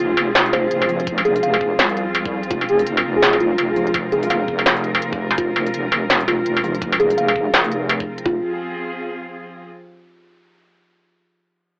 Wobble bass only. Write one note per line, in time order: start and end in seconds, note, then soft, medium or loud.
0.00 0.70 F1 loud
0.71 1.78 F1 loud
1.79 2.49 C2 loud
2.51 3.57 F1 medium
3.58 4.65 F1 loud
4.66 5.37 F1 medium
5.38 6.45 F1 loud
6.46 7.52 F1 medium
7.54 8.24 F1 loud
8.26 8.42 F1 loud